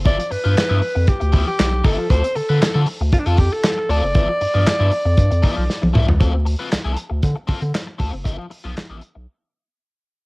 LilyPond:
<<
  \new Staff \with { instrumentName = "Alto saxophone" } { \time 4/4 \key d \dorian \tempo 4 = 117 d''8 b'4. g'8. g'8. a'8 | c''8 a'4 r8 f'32 d'32 f'16 g'16 a'8. d''8~ | d''2.~ d''8 r8 | r1 |
r1 | }
  \new Staff \with { instrumentName = "Overdriven electric guitar" } { \time 4/4 \key d \dorian <f b e'>16 r8 <f b f'>16 r16 <f b e'>16 r4 <f b e'>16 r8. <f b e'>8 | <c' f' a'>16 r8 <c' f' b'>16 r16 <c' f' a'>16 r8. <c' f' a'>16 r4 <c' f' a'>16 r16 | <f b e'>16 r8 <f b f'>16 r16 <f b e'>16 r4 <f b e'>8 r8 <f b e'>16 r16 | <c' f' a'>16 r8 <c' f' b'>16 r16 <c' f' a'>8 r8. <c' f' a'>16 r8. <c' f' a'>16 r16 |
<f b e'>8 r16 <f b f'>16 r16 <f b e'>8 r2 r16 | }
  \new Staff \with { instrumentName = "Analog synth bass" } { \clef bass \time 4/4 \key d \dorian g,,16 r16 g,16 g,16 g,16 g,16 r16 f,16 d,16 d,8 r16 b,,8 g,,16 r16 | d,16 r16 d16 d16 d16 d16 r16 d,16 f,16 f,8 r8. d,16 fis,,16 | g,,16 r16 g,16 g,16 g,16 g,16 r16 f,16 g,16 f,16 r16 b,,16 r16 b,,16 c,16 cis,16 | d,8. r16 c,16 c,16 r16 d,16 d16 r16 d16 d16 r8 d,16 fis,,16 |
g,,16 r8 b,,16 a,,16 a,,16 r16 b,,16 r2 | }
  \new DrumStaff \with { instrumentName = "Drums" } \drummode { \time 4/4 <hh bd>16 hh16 hho8 <hc hh sn>8 hho8 <hh bd>16 hh16 <hho bd>8 <hc hh sn>8 <hho bd>8 | <hh bd>16 hh16 hho8 <hc hh sn>8 hho8 <hh bd>16 hh16 <hho bd>8 <hc hh sn>8 hho8 | <hh bd>8 hho8 <hc hh sn>8 hho8 <hh bd>16 hh16 <hho bd>8 sn16 tommh16 toml16 tomfh16 | <hh bd>8 hho8 <hc hh sn>8 hh8 <hh bd>8 <hho bd>16 hh16 <hc hh sn>8 <hho bd>8 |
<hh bd>8 hho8 <hc hh sn>8 hh8 r4 r4 | }
>>